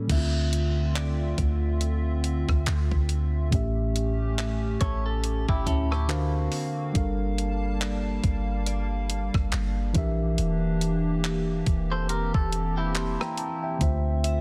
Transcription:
Already playing: A2 G3 A#3 C#4 A4
0.07 D2 D3 A3 C4 E4 F4 E5, kick, closed hi-hat, crash
0.12 E5
0.17 F4
0.53 closed hi-hat
0.95 D5, clap, closed hi-hat
1.38 D2, kick, closed hi-hat
1.81 closed hi-hat
2.24 closed hi-hat
2.49 D2, kick, cross-stick
2.66 D2, clap, closed hi-hat
2.92 D2, kick
3.09 closed hi-hat
3.50 A1 A2 A3 C#4 G4, kick, closed hi-hat
3.55 E5
3.96 closed hi-hat
4.38 E5, clap, closed hi-hat
4.81 A1 A4 C#5, kick, closed hi-hat
5.06 A4
5.24 closed hi-hat
5.49 G1 E4 G4 E5 G5, kick
5.67 D2 C#4 E4 A5, kick, closed hi-hat
5.91 E4 G4 A5 C#6, cross-stick
6.08 D3 A#3 C4 D4 F#4 A#4 C5 F5, clap, closed hi-hat
6.52 open hi-hat
6.93 G1 G3 A#3 D4 A4 A#4 A5, kick, closed hi-hat
6.97 F5
7.38 closed hi-hat
7.81 D5, clap, closed hi-hat
8.24 G1, kick, closed hi-hat
8.66 D5, closed hi-hat
9.10 closed hi-hat
9.34 G1, kick, cross-stick
9.52 G1, clap, closed hi-hat
9.93 A#1 E3 A#3 D4 G4 A#4, kick, closed hi-hat
9.98 E5
10.38 E1, closed hi-hat
10.81 closed hi-hat
11.24 clap, closed hi-hat
11.66 E1 C4, kick, closed hi-hat
11.92 A4 C5
12.09 G4 A#4, closed hi-hat
12.34 E1 A4, kick
12.52 closed hi-hat
12.77 E4 G4
12.95 A5 C6, clap, closed hi-hat
13.20 G5 A#5, cross-stick
13.37 A5, closed hi-hat
13.63 E5 G5
13.79 D2 D3 A3 C4 F4 C5 E5, kick, closed hi-hat
13.83 E5
14.24 E5, closed hi-hat

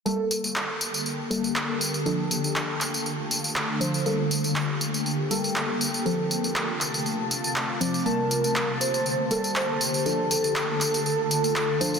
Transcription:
0.05 D3 G3 A#3 G4 A4, tambourine
0.31 tambourine
0.44 tambourine
0.56 clap
0.81 tambourine
0.94 tambourine
1.06 tambourine
1.30 G3 A#3 A4, tambourine
1.44 tambourine
1.56 clap, tambourine
1.81 tambourine
1.94 tambourine
2.06 D3 F3 A3 D4 F4 A4, tambourine
2.31 tambourine
2.44 tambourine
2.56 clap, tambourine
2.81 clap, tambourine
2.94 tambourine
3.06 tambourine
3.31 tambourine
3.44 tambourine
3.56 clap, tambourine
3.81 F3 D4 C5, tambourine
3.94 tambourine
4.05 G3 A#3 G4 A4 A5, tambourine
4.31 tambourine
4.44 tambourine
4.56 clap, tambourine
4.81 tambourine
4.94 tambourine
5.06 tambourine
5.31 G3 A#3 A4, tambourine
5.44 tambourine
5.56 clap, tambourine
5.81 tambourine
5.94 tambourine
6.05 C3 F3 A3 C4 F4 A4, tambourine
6.31 tambourine
6.44 tambourine
6.56 clap, tambourine
6.81 clap, tambourine
6.94 tambourine
7.06 tambourine
7.31 tambourine
7.44 tambourine
7.56 clap, tambourine
7.81 F3 C4 D5, tambourine
7.94 tambourine
8.06 D3 G3 A#3 G4 A#4 A5, tambourine
8.31 tambourine
8.44 tambourine
8.56 clap, tambourine
8.80 C5, tambourine
8.94 tambourine
9.06 tambourine
9.31 G3 A#3 A4, tambourine
9.44 tambourine
9.56 C5, clap, tambourine
9.81 tambourine
9.94 tambourine
10.06 F3 A3 D4 F4 A4, tambourine
10.31 A4, tambourine
10.44 tambourine
10.56 clap, tambourine
10.81 clap, tambourine
10.94 tambourine
11.06 tambourine
11.31 tambourine
11.44 tambourine
11.56 clap, tambourine
11.81 F3 D4 C5, tambourine
11.94 tambourine

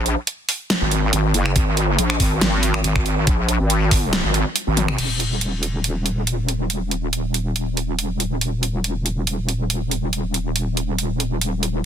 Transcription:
Already playing: A#1
0.06 closed hi-hat
0.27 closed hi-hat
0.49 open hi-hat
0.70 snare, closed hi-hat
0.81 G#1
0.91 closed hi-hat
1.13 G#1, closed hi-hat
1.34 F#1, closed hi-hat
1.46 finger snap
1.56 G#1, kick, closed hi-hat
1.77 closed hi-hat
1.99 A#1, closed hi-hat
2.10 finger snap
2.20 G#1, kick, open hi-hat
2.41 G#1, snare, closed hi-hat
2.63 closed hi-hat
2.74 finger snap
2.84 G#1, closed hi-hat
2.96 finger snap, kick
3.06 closed hi-hat
3.27 A#1, kick, closed hi-hat
3.49 closed hi-hat
3.60 G#1
3.70 closed hi-hat
3.91 kick, open hi-hat
4.13 snare, closed hi-hat
4.24 G#1
4.34 closed hi-hat
4.56 closed hi-hat
4.67 G#1
4.77 closed hi-hat, high tom
4.88 finger snap, mid tom
4.98 D#1, closed hi-hat, crash
5.20 closed hi-hat
5.41 closed hi-hat
5.63 closed hi-hat
5.84 closed hi-hat
6.06 closed hi-hat
6.27 closed hi-hat
6.49 closed hi-hat
6.70 closed hi-hat
6.91 closed hi-hat
7.13 closed hi-hat
7.34 closed hi-hat
7.56 closed hi-hat
7.77 closed hi-hat
7.99 closed hi-hat
8.20 closed hi-hat
8.41 closed hi-hat
8.63 closed hi-hat
8.84 closed hi-hat
9.06 closed hi-hat
9.27 closed hi-hat
9.49 closed hi-hat
9.70 closed hi-hat
9.91 closed hi-hat
10.13 closed hi-hat
10.34 closed hi-hat
10.56 closed hi-hat
10.77 closed hi-hat
10.99 closed hi-hat
11.20 closed hi-hat
11.41 closed hi-hat
11.63 closed hi-hat

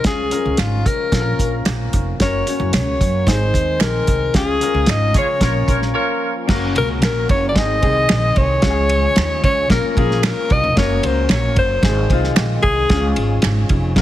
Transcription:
Already playing: G#3
0.04 C#2 F3 C#4 F4 G#4, kick, snare, closed hi-hat
0.30 C#4 F4 A#4, closed hi-hat
0.45 C#2
0.57 G#1 F4, finger snap, snare, closed hi-hat
0.86 C#3 A#4, kick, closed hi-hat
1.11 A#1 A#3 C#4 F4 A4, kick, snare, closed hi-hat
1.20 A#4
1.39 A#1, kick, closed hi-hat
1.65 A#1, finger snap, snare, closed hi-hat
1.93 F1, kick, closed hi-hat
2.18 F#1 F#3 C#4 F#4 A#4 C#5, kick, snare, closed hi-hat
2.47 C#4 F#4 C#5, closed hi-hat
2.60 F#1
2.73 C#2 C#5, finger snap, snare, closed hi-hat
3.01 F#2, kick, closed hi-hat
3.26 G#1 D#3 G#3 C4 D#4 G#4 C5, kick, snare, closed hi-hat
3.54 D#2, kick, closed hi-hat
3.80 A#1 A#4, finger snap, snare, closed hi-hat
4.07 C2, kick, closed hi-hat
4.33 C#2 F3 C#4 F4 G#4, kick, snare, closed hi-hat
4.60 C#4 F4 A#4, closed hi-hat
4.74 C#2
4.86 G#1, finger snap, snare, closed hi-hat
4.91 D#5
5.14 C#3 F4 G#4 C#5, kick, closed hi-hat
5.41 A#1 A#3 C#4 F4 A#4 C#5, kick, snare, closed hi-hat
5.68 A#1 F4 A#4 C#5, kick, closed hi-hat
5.82 snare
5.94 F4 A#4 C#5
6.47 F#1 F#3 A#3 C#4 F#4 A#4, kick, snare, crash
6.75 C#2 A#4, ride
7.02 A#1 A#4, finger snap, snare, ride
7.29 F#1 C#5, kick, ride
7.49 D5
7.54 G#1 D#3 G#3 C4 D#4 D#5, kick, snare, ride
7.58 G#4
7.81 C2 G#3 C4 D#4 G#4, kick, ride
8.09 A#1, finger snap, snare, ride
8.36 C2 C#5, kick, ride
8.61 C#2 F3 G#3 C#4 F4 F#4, kick, snare, ride
8.70 G#4
8.89 ride
9.16 D#2, finger snap, snare, ride
9.44 C#2 C#5, kick, ride
9.69 A#1 A#3 C#4 F4 A#4, kick, snare, ride
9.84 muted upright bass stroke
9.91 A#4
9.96 A#1 A#3 C#4 F4 G#4 A#4, kick, ride
10.11 snare
10.23 A#4, finger snap, snare, ride
10.50 C2 D#5, kick, ride
10.64 F1
10.76 F#1 F#3 A#3 C#4 F#4 A#4 C#5, kick, snare, ride
11.03 C#2 C5, ride
11.29 A#1 C#5, finger snap, snare, ride
11.56 F#1 C5, kick, ride
11.82 G#1 D#3 G#3 C4 D#4 G#4, kick, snare, ride
12.10 C2 G#3 C4 D#4 F4, kick, ride
12.24 snare
12.36 A#1, finger snap, snare, ride
12.63 C2 G#4, kick, ride
12.89 C#2 F3 G#3 C#4 F4 G#4, kick, snare, ride
13.16 G#1, ride
13.42 G#1, finger snap, snare, ride
13.69 F1, kick, ride
13.96 A#1 A#3 C#4 F4 A#4, kick, snare, ride

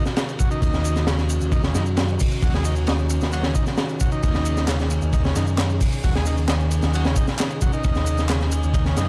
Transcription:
Already playing: D#3 C#4 F#4
0.06 snare, shaker
0.17 snare, ride, shaker
0.29 ride, shaker
0.39 F#3, kick, ride, shaker
0.51 D#3, ride, shaker
0.62 D#2 D#3, kick, ride, shaker
0.73 snare, shaker
0.85 ride, shaker
0.96 snare, shaker
1.07 C#3, snare, ride, shaker
1.18 snare, shaker
1.29 ride, shaker
1.41 D#2, shaker
1.52 D#3, kick, ride, shaker
1.64 C#3, snare, shaker
1.75 F#2 D#3, snare, ride, shaker
1.86 shaker
1.97 snare, ride, shaker
2.08 shaker
2.19 kick, open hi-hat, shaker
2.31 ride, shaker
2.42 D#2 F#3, kick, ride, shaker
2.54 G#3, snare, shaker
2.65 D#3, ride, shaker
2.76 shaker
2.87 D#4, snare, ride, shaker
2.99 shaker
3.10 ride, shaker
3.21 D#2, snare, shaker
3.32 F#3, ride, shaker
3.43 C#3, snare, shaker
3.55 D#3, kick, ride, shaker
3.66 snare, shaker
3.77 snare, ride, shaker
3.89 ride, shaker
4.00 F#3, kick, ride, shaker
4.12 D#3, ride, shaker
4.23 D#2 D#3 G#4, kick, ride, shaker
4.34 snare, shaker
4.45 ride, shaker
4.57 snare, shaker
4.68 C#3, snare, clap, ride, shaker
4.79 snare, shaker
4.90 ride, shaker
5.02 D#2, shaker
5.13 D#3, kick, ride, shaker
5.25 C#3, snare, shaker
5.36 F#2 D#3, snare, ride, shaker
5.47 shaker
5.58 snare, clap, ride, shaker
5.70 shaker
5.81 kick, open hi-hat, shaker
5.92 ride, shaker
6.04 D#2 F#3, kick, ride, shaker
6.15 G#3, snare, shaker
6.26 D#3, ride, shaker
6.37 shaker
6.48 D#4, snare, clap, ride, shaker
6.60 shaker
6.71 ride, shaker
6.82 D#2, snare, shaker
6.94 F#3, ride, shaker
7.05 C#3, snare, shaker
7.16 D#3, kick, ride, shaker
7.27 snare, shaker
7.39 snare, clap, ride, shaker
7.50 ride, shaker
7.61 F#3, kick, ride, shaker
7.73 D#3, ride, shaker
7.84 D#2 D#3, kick, ride, shaker
7.95 snare, shaker
8.06 ride, shaker
8.18 snare, shaker
8.29 C#3, snare, clap, ride, shaker
8.40 snare, shaker
8.52 ride, shaker
8.63 D#2, shaker
8.74 D#3, kick, ride, shaker
8.86 C#3, snare, shaker
8.96 F#2 D#3, snare, ride, shaker

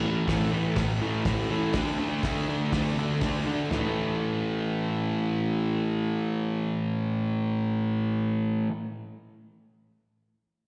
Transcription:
0.05 A2 E3 A3
0.27 A2 E3 A3, kick, snare, open hi-hat
0.52 A2 E3 A3
0.76 A2 E3 A3, kick, snare, open hi-hat
1.02 A2 E3 A3
1.25 A2 E3 A3, kick, snare, open hi-hat
1.49 A2 E3 A3
1.73 D3 A3 D4, kick, snare, open hi-hat
1.98 D3 A3 D4
2.23 D3 A3 D4, kick, snare, open hi-hat
2.48 D3 A3 D4
2.72 D3 A3 D4, kick, snare, open hi-hat
2.98 D3 A3 D4
3.21 D3 A3 D4, kick, snare, open hi-hat
3.46 D3 A3 D4
3.70 A2 E3 A3, snare, floor tom

